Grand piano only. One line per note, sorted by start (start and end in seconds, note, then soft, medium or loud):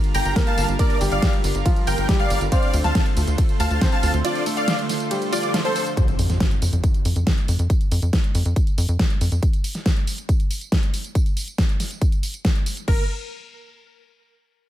0.36 0.92 A#3 medium
0.36 0.92 A#4 loud
1.01 1.57 G3 medium
1.01 1.57 G4 loud
1.66 2.07 F3 medium
1.66 2.07 F4 medium
2.09 2.50 G3 medium
2.09 2.50 G4 medium
2.52 3.08 C4 medium
2.52 3.08 C5 loud
3.81 4.38 C4 medium
3.81 4.38 C5 loud
4.46 5.02 A3 medium
4.46 5.02 A4 loud
5.11 5.52 G3 medium
5.11 5.52 G4 medium
5.54 5.95 F3 medium
5.54 5.95 F4 medium